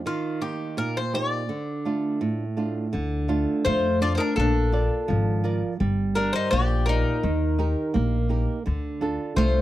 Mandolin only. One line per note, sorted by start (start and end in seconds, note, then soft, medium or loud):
3.66 3.99 F4 medium
4.03 4.14 F4 medium
4.17 4.36 D4 medium
4.17 4.20 D#4 soft
4.40 5.42 D4 medium
6.16 6.33 D4 medium
6.36 6.51 D#4 medium
6.53 6.86 G4 medium
6.89 8.27 D#4 medium
9.38 9.62 F4 medium